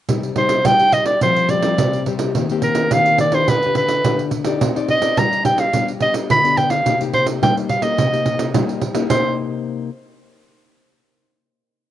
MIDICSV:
0, 0, Header, 1, 4, 480
1, 0, Start_track
1, 0, Key_signature, -3, "minor"
1, 0, Tempo, 562324
1, 78, Time_signature, 4, 2, 24, 8
1, 10165, End_track
2, 0, Start_track
2, 0, Title_t, "Soprano saxophone"
2, 0, Program_c, 0, 64
2, 322, Note_on_c, 0, 72, 89
2, 563, Note_on_c, 0, 79, 107
2, 576, Note_off_c, 0, 72, 0
2, 794, Note_on_c, 0, 75, 93
2, 806, Note_off_c, 0, 79, 0
2, 900, Note_off_c, 0, 75, 0
2, 905, Note_on_c, 0, 74, 78
2, 1025, Note_off_c, 0, 74, 0
2, 1047, Note_on_c, 0, 72, 84
2, 1280, Note_on_c, 0, 74, 79
2, 1292, Note_off_c, 0, 72, 0
2, 1764, Note_off_c, 0, 74, 0
2, 2251, Note_on_c, 0, 70, 80
2, 2502, Note_on_c, 0, 77, 96
2, 2514, Note_off_c, 0, 70, 0
2, 2730, Note_off_c, 0, 77, 0
2, 2735, Note_on_c, 0, 74, 83
2, 2854, Note_on_c, 0, 72, 80
2, 2867, Note_off_c, 0, 74, 0
2, 2981, Note_on_c, 0, 71, 90
2, 2994, Note_off_c, 0, 72, 0
2, 3217, Note_off_c, 0, 71, 0
2, 3221, Note_on_c, 0, 71, 77
2, 3664, Note_off_c, 0, 71, 0
2, 4183, Note_on_c, 0, 75, 89
2, 4425, Note_on_c, 0, 82, 88
2, 4438, Note_off_c, 0, 75, 0
2, 4652, Note_off_c, 0, 82, 0
2, 4657, Note_on_c, 0, 79, 82
2, 4777, Note_on_c, 0, 77, 87
2, 4789, Note_off_c, 0, 79, 0
2, 5016, Note_off_c, 0, 77, 0
2, 5138, Note_on_c, 0, 75, 79
2, 5246, Note_off_c, 0, 75, 0
2, 5386, Note_on_c, 0, 83, 104
2, 5613, Note_on_c, 0, 79, 89
2, 5625, Note_off_c, 0, 83, 0
2, 5722, Note_on_c, 0, 77, 85
2, 5734, Note_off_c, 0, 79, 0
2, 5968, Note_off_c, 0, 77, 0
2, 6092, Note_on_c, 0, 72, 83
2, 6200, Note_off_c, 0, 72, 0
2, 6339, Note_on_c, 0, 79, 82
2, 6445, Note_off_c, 0, 79, 0
2, 6569, Note_on_c, 0, 77, 77
2, 6678, Note_on_c, 0, 75, 79
2, 6691, Note_off_c, 0, 77, 0
2, 7283, Note_off_c, 0, 75, 0
2, 7771, Note_on_c, 0, 72, 78
2, 7992, Note_off_c, 0, 72, 0
2, 10165, End_track
3, 0, Start_track
3, 0, Title_t, "Nylon-string guitar"
3, 0, Program_c, 1, 24
3, 77, Note_on_c, 1, 55, 46
3, 80, Note_on_c, 1, 48, 65
3, 82, Note_on_c, 1, 63, 52
3, 87, Note_on_c, 1, 67, 59
3, 280, Note_off_c, 1, 55, 0
3, 282, Note_off_c, 1, 63, 0
3, 285, Note_off_c, 1, 67, 0
3, 308, Note_on_c, 1, 55, 53
3, 313, Note_on_c, 1, 63, 59
3, 315, Note_on_c, 1, 67, 61
3, 516, Note_off_c, 1, 55, 0
3, 519, Note_off_c, 1, 63, 0
3, 519, Note_off_c, 1, 67, 0
3, 537, Note_off_c, 1, 48, 0
3, 557, Note_on_c, 1, 55, 67
3, 558, Note_off_c, 1, 55, 0
3, 558, Note_on_c, 1, 55, 53
3, 561, Note_on_c, 1, 63, 62
3, 565, Note_on_c, 1, 67, 60
3, 575, Note_off_c, 1, 55, 0
3, 643, Note_off_c, 1, 63, 0
3, 645, Note_off_c, 1, 67, 0
3, 692, Note_on_c, 1, 55, 54
3, 695, Note_on_c, 1, 63, 54
3, 699, Note_on_c, 1, 67, 58
3, 1009, Note_off_c, 1, 55, 0
3, 1011, Note_off_c, 1, 63, 0
3, 1012, Note_off_c, 1, 67, 0
3, 1048, Note_on_c, 1, 53, 66
3, 1052, Note_on_c, 1, 55, 46
3, 1052, Note_on_c, 1, 60, 46
3, 1056, Note_on_c, 1, 67, 51
3, 1248, Note_off_c, 1, 60, 0
3, 1249, Note_off_c, 1, 55, 0
3, 1251, Note_off_c, 1, 67, 0
3, 1287, Note_on_c, 1, 55, 54
3, 1290, Note_on_c, 1, 60, 60
3, 1294, Note_on_c, 1, 67, 63
3, 1367, Note_off_c, 1, 55, 0
3, 1369, Note_off_c, 1, 60, 0
3, 1370, Note_off_c, 1, 67, 0
3, 1400, Note_on_c, 1, 55, 58
3, 1405, Note_on_c, 1, 60, 59
3, 1409, Note_on_c, 1, 67, 73
3, 1504, Note_off_c, 1, 53, 0
3, 1535, Note_on_c, 1, 48, 68
3, 1725, Note_off_c, 1, 55, 0
3, 1727, Note_off_c, 1, 60, 0
3, 1730, Note_off_c, 1, 67, 0
3, 1769, Note_on_c, 1, 55, 56
3, 1774, Note_on_c, 1, 60, 51
3, 1778, Note_on_c, 1, 67, 55
3, 1988, Note_off_c, 1, 48, 0
3, 1989, Note_off_c, 1, 55, 0
3, 1992, Note_off_c, 1, 60, 0
3, 1993, Note_off_c, 1, 67, 0
3, 2016, Note_on_c, 1, 51, 58
3, 2020, Note_on_c, 1, 58, 52
3, 2023, Note_on_c, 1, 60, 51
3, 2027, Note_on_c, 1, 67, 62
3, 2096, Note_off_c, 1, 58, 0
3, 2096, Note_off_c, 1, 60, 0
3, 2099, Note_off_c, 1, 67, 0
3, 2144, Note_on_c, 1, 58, 63
3, 2148, Note_on_c, 1, 60, 65
3, 2151, Note_on_c, 1, 67, 83
3, 2458, Note_off_c, 1, 58, 0
3, 2461, Note_off_c, 1, 60, 0
3, 2462, Note_off_c, 1, 67, 0
3, 2469, Note_off_c, 1, 51, 0
3, 2503, Note_on_c, 1, 51, 73
3, 2507, Note_on_c, 1, 58, 53
3, 2507, Note_on_c, 1, 60, 56
3, 2514, Note_on_c, 1, 67, 62
3, 2820, Note_off_c, 1, 58, 0
3, 2821, Note_off_c, 1, 60, 0
3, 2824, Note_off_c, 1, 67, 0
3, 2847, Note_on_c, 1, 62, 57
3, 2851, Note_on_c, 1, 67, 62
3, 2853, Note_on_c, 1, 71, 66
3, 2954, Note_off_c, 1, 51, 0
3, 2984, Note_on_c, 1, 50, 67
3, 3051, Note_off_c, 1, 62, 0
3, 3052, Note_off_c, 1, 67, 0
3, 3054, Note_off_c, 1, 71, 0
3, 3121, Note_on_c, 1, 62, 53
3, 3123, Note_on_c, 1, 67, 58
3, 3129, Note_on_c, 1, 71, 65
3, 3429, Note_off_c, 1, 62, 0
3, 3431, Note_off_c, 1, 67, 0
3, 3432, Note_off_c, 1, 71, 0
3, 3435, Note_off_c, 1, 50, 0
3, 3460, Note_on_c, 1, 50, 73
3, 3463, Note_on_c, 1, 62, 62
3, 3467, Note_on_c, 1, 67, 61
3, 3472, Note_on_c, 1, 71, 67
3, 3682, Note_off_c, 1, 62, 0
3, 3686, Note_off_c, 1, 67, 0
3, 3688, Note_off_c, 1, 71, 0
3, 3809, Note_on_c, 1, 63, 58
3, 3811, Note_on_c, 1, 67, 59
3, 3816, Note_on_c, 1, 74, 70
3, 3914, Note_off_c, 1, 50, 0
3, 3939, Note_on_c, 1, 60, 68
3, 4014, Note_off_c, 1, 63, 0
3, 4014, Note_off_c, 1, 67, 0
3, 4017, Note_off_c, 1, 74, 0
3, 4064, Note_on_c, 1, 63, 71
3, 4070, Note_on_c, 1, 67, 61
3, 4075, Note_on_c, 1, 74, 80
3, 4263, Note_off_c, 1, 63, 0
3, 4263, Note_off_c, 1, 67, 0
3, 4264, Note_off_c, 1, 74, 0
3, 4283, Note_on_c, 1, 63, 55
3, 4287, Note_on_c, 1, 67, 62
3, 4292, Note_on_c, 1, 74, 70
3, 4393, Note_off_c, 1, 60, 0
3, 4420, Note_on_c, 1, 55, 72
3, 4611, Note_off_c, 1, 63, 0
3, 4613, Note_off_c, 1, 67, 0
3, 4614, Note_off_c, 1, 74, 0
3, 4646, Note_on_c, 1, 63, 59
3, 4650, Note_on_c, 1, 67, 62
3, 4655, Note_on_c, 1, 74, 62
3, 4852, Note_off_c, 1, 63, 0
3, 4855, Note_off_c, 1, 67, 0
3, 4856, Note_off_c, 1, 74, 0
3, 4874, Note_off_c, 1, 55, 0
3, 4904, Note_on_c, 1, 55, 59
3, 4909, Note_on_c, 1, 59, 52
3, 4909, Note_on_c, 1, 62, 55
3, 4913, Note_on_c, 1, 67, 55
3, 5043, Note_off_c, 1, 59, 0
3, 5043, Note_off_c, 1, 62, 0
3, 5045, Note_off_c, 1, 67, 0
3, 5133, Note_on_c, 1, 59, 64
3, 5134, Note_on_c, 1, 62, 55
3, 5142, Note_on_c, 1, 67, 63
3, 5355, Note_off_c, 1, 55, 0
3, 5375, Note_on_c, 1, 50, 68
3, 5455, Note_off_c, 1, 62, 0
3, 5456, Note_off_c, 1, 59, 0
3, 5460, Note_off_c, 1, 67, 0
3, 5499, Note_on_c, 1, 59, 60
3, 5506, Note_on_c, 1, 62, 56
3, 5506, Note_on_c, 1, 67, 71
3, 5831, Note_off_c, 1, 50, 0
3, 5838, Note_off_c, 1, 59, 0
3, 5839, Note_off_c, 1, 62, 0
3, 5841, Note_off_c, 1, 67, 0
3, 5850, Note_on_c, 1, 48, 67
3, 5854, Note_on_c, 1, 58, 59
3, 5857, Note_on_c, 1, 63, 59
3, 5859, Note_on_c, 1, 67, 58
3, 5925, Note_off_c, 1, 58, 0
3, 5928, Note_off_c, 1, 63, 0
3, 5928, Note_off_c, 1, 67, 0
3, 5981, Note_on_c, 1, 58, 59
3, 5986, Note_on_c, 1, 63, 66
3, 5990, Note_on_c, 1, 67, 81
3, 6299, Note_off_c, 1, 58, 0
3, 6300, Note_off_c, 1, 63, 0
3, 6303, Note_off_c, 1, 67, 0
3, 6308, Note_off_c, 1, 48, 0
3, 6332, Note_on_c, 1, 55, 73
3, 6336, Note_on_c, 1, 58, 55
3, 6338, Note_on_c, 1, 63, 56
3, 6342, Note_on_c, 1, 67, 62
3, 6559, Note_off_c, 1, 58, 0
3, 6559, Note_off_c, 1, 63, 0
3, 6562, Note_off_c, 1, 67, 0
3, 6678, Note_on_c, 1, 58, 55
3, 6684, Note_on_c, 1, 63, 61
3, 6688, Note_on_c, 1, 67, 62
3, 6788, Note_off_c, 1, 55, 0
3, 6813, Note_on_c, 1, 48, 58
3, 6886, Note_off_c, 1, 58, 0
3, 6889, Note_off_c, 1, 63, 0
3, 6891, Note_off_c, 1, 67, 0
3, 6933, Note_on_c, 1, 58, 52
3, 6937, Note_on_c, 1, 63, 54
3, 6942, Note_on_c, 1, 67, 61
3, 7253, Note_off_c, 1, 58, 0
3, 7255, Note_off_c, 1, 63, 0
3, 7256, Note_off_c, 1, 67, 0
3, 7267, Note_off_c, 1, 48, 0
3, 7285, Note_on_c, 1, 55, 62
3, 7288, Note_on_c, 1, 58, 57
3, 7292, Note_on_c, 1, 63, 54
3, 7298, Note_on_c, 1, 67, 61
3, 7513, Note_off_c, 1, 58, 0
3, 7515, Note_off_c, 1, 63, 0
3, 7517, Note_off_c, 1, 67, 0
3, 7637, Note_on_c, 1, 58, 66
3, 7641, Note_on_c, 1, 63, 62
3, 7643, Note_on_c, 1, 67, 64
3, 7741, Note_off_c, 1, 55, 0
3, 7767, Note_off_c, 1, 58, 0
3, 7768, Note_off_c, 1, 63, 0
3, 7769, Note_on_c, 1, 48, 52
3, 7777, Note_off_c, 1, 67, 0
3, 7777, Note_on_c, 1, 58, 62
3, 7779, Note_on_c, 1, 63, 66
3, 7787, Note_on_c, 1, 67, 66
3, 8443, Note_off_c, 1, 48, 0
3, 8443, Note_off_c, 1, 58, 0
3, 8443, Note_off_c, 1, 63, 0
3, 8443, Note_off_c, 1, 67, 0
3, 10165, End_track
4, 0, Start_track
4, 0, Title_t, "Pandeiro"
4, 73, Note_on_c, 9, 54, 74
4, 159, Note_off_c, 9, 54, 0
4, 199, Note_on_c, 9, 54, 33
4, 284, Note_off_c, 9, 54, 0
4, 305, Note_on_c, 9, 54, 57
4, 390, Note_off_c, 9, 54, 0
4, 418, Note_on_c, 9, 54, 68
4, 503, Note_off_c, 9, 54, 0
4, 553, Note_on_c, 9, 54, 85
4, 639, Note_off_c, 9, 54, 0
4, 678, Note_on_c, 9, 54, 33
4, 763, Note_off_c, 9, 54, 0
4, 788, Note_on_c, 9, 54, 58
4, 873, Note_off_c, 9, 54, 0
4, 901, Note_on_c, 9, 54, 60
4, 986, Note_off_c, 9, 54, 0
4, 1035, Note_on_c, 9, 54, 72
4, 1120, Note_off_c, 9, 54, 0
4, 1165, Note_on_c, 9, 54, 32
4, 1250, Note_off_c, 9, 54, 0
4, 1269, Note_on_c, 9, 54, 53
4, 1354, Note_off_c, 9, 54, 0
4, 1387, Note_on_c, 9, 54, 67
4, 1472, Note_off_c, 9, 54, 0
4, 1522, Note_on_c, 9, 54, 83
4, 1607, Note_off_c, 9, 54, 0
4, 1650, Note_on_c, 9, 54, 30
4, 1736, Note_off_c, 9, 54, 0
4, 1761, Note_on_c, 9, 54, 55
4, 1846, Note_off_c, 9, 54, 0
4, 1868, Note_on_c, 9, 54, 68
4, 1954, Note_off_c, 9, 54, 0
4, 2005, Note_on_c, 9, 54, 72
4, 2090, Note_off_c, 9, 54, 0
4, 2129, Note_on_c, 9, 54, 32
4, 2214, Note_off_c, 9, 54, 0
4, 2235, Note_on_c, 9, 54, 60
4, 2321, Note_off_c, 9, 54, 0
4, 2346, Note_on_c, 9, 54, 66
4, 2432, Note_off_c, 9, 54, 0
4, 2484, Note_on_c, 9, 54, 80
4, 2570, Note_off_c, 9, 54, 0
4, 2611, Note_on_c, 9, 54, 35
4, 2696, Note_off_c, 9, 54, 0
4, 2718, Note_on_c, 9, 54, 60
4, 2803, Note_off_c, 9, 54, 0
4, 2833, Note_on_c, 9, 54, 65
4, 2919, Note_off_c, 9, 54, 0
4, 2969, Note_on_c, 9, 54, 82
4, 3055, Note_off_c, 9, 54, 0
4, 3096, Note_on_c, 9, 54, 32
4, 3181, Note_off_c, 9, 54, 0
4, 3201, Note_on_c, 9, 54, 62
4, 3287, Note_off_c, 9, 54, 0
4, 3316, Note_on_c, 9, 54, 65
4, 3401, Note_off_c, 9, 54, 0
4, 3452, Note_on_c, 9, 54, 83
4, 3537, Note_off_c, 9, 54, 0
4, 3577, Note_on_c, 9, 54, 33
4, 3662, Note_off_c, 9, 54, 0
4, 3680, Note_on_c, 9, 54, 54
4, 3766, Note_off_c, 9, 54, 0
4, 3794, Note_on_c, 9, 54, 70
4, 3880, Note_off_c, 9, 54, 0
4, 3936, Note_on_c, 9, 54, 84
4, 4022, Note_off_c, 9, 54, 0
4, 4065, Note_on_c, 9, 54, 35
4, 4150, Note_off_c, 9, 54, 0
4, 4169, Note_on_c, 9, 54, 52
4, 4255, Note_off_c, 9, 54, 0
4, 4283, Note_on_c, 9, 54, 65
4, 4368, Note_off_c, 9, 54, 0
4, 4415, Note_on_c, 9, 54, 80
4, 4500, Note_off_c, 9, 54, 0
4, 4547, Note_on_c, 9, 54, 31
4, 4633, Note_off_c, 9, 54, 0
4, 4651, Note_on_c, 9, 54, 62
4, 4736, Note_off_c, 9, 54, 0
4, 4763, Note_on_c, 9, 54, 62
4, 4849, Note_off_c, 9, 54, 0
4, 4894, Note_on_c, 9, 54, 72
4, 4980, Note_off_c, 9, 54, 0
4, 5022, Note_on_c, 9, 54, 33
4, 5107, Note_off_c, 9, 54, 0
4, 5125, Note_on_c, 9, 54, 54
4, 5210, Note_off_c, 9, 54, 0
4, 5243, Note_on_c, 9, 54, 66
4, 5328, Note_off_c, 9, 54, 0
4, 5378, Note_on_c, 9, 54, 83
4, 5463, Note_off_c, 9, 54, 0
4, 5504, Note_on_c, 9, 54, 35
4, 5590, Note_off_c, 9, 54, 0
4, 5611, Note_on_c, 9, 54, 62
4, 5697, Note_off_c, 9, 54, 0
4, 5720, Note_on_c, 9, 54, 61
4, 5806, Note_off_c, 9, 54, 0
4, 5855, Note_on_c, 9, 54, 75
4, 5941, Note_off_c, 9, 54, 0
4, 5982, Note_on_c, 9, 54, 36
4, 6067, Note_off_c, 9, 54, 0
4, 6090, Note_on_c, 9, 54, 52
4, 6175, Note_off_c, 9, 54, 0
4, 6201, Note_on_c, 9, 54, 65
4, 6286, Note_off_c, 9, 54, 0
4, 6340, Note_on_c, 9, 54, 81
4, 6425, Note_off_c, 9, 54, 0
4, 6465, Note_on_c, 9, 54, 30
4, 6550, Note_off_c, 9, 54, 0
4, 6567, Note_on_c, 9, 54, 62
4, 6652, Note_off_c, 9, 54, 0
4, 6676, Note_on_c, 9, 54, 59
4, 6762, Note_off_c, 9, 54, 0
4, 6814, Note_on_c, 9, 54, 80
4, 6900, Note_off_c, 9, 54, 0
4, 6944, Note_on_c, 9, 54, 33
4, 7030, Note_off_c, 9, 54, 0
4, 7047, Note_on_c, 9, 54, 60
4, 7133, Note_off_c, 9, 54, 0
4, 7163, Note_on_c, 9, 54, 70
4, 7248, Note_off_c, 9, 54, 0
4, 7292, Note_on_c, 9, 54, 86
4, 7378, Note_off_c, 9, 54, 0
4, 7418, Note_on_c, 9, 54, 32
4, 7504, Note_off_c, 9, 54, 0
4, 7524, Note_on_c, 9, 54, 56
4, 7609, Note_off_c, 9, 54, 0
4, 7637, Note_on_c, 9, 54, 66
4, 7722, Note_off_c, 9, 54, 0
4, 7768, Note_on_c, 9, 54, 92
4, 7853, Note_off_c, 9, 54, 0
4, 10165, End_track
0, 0, End_of_file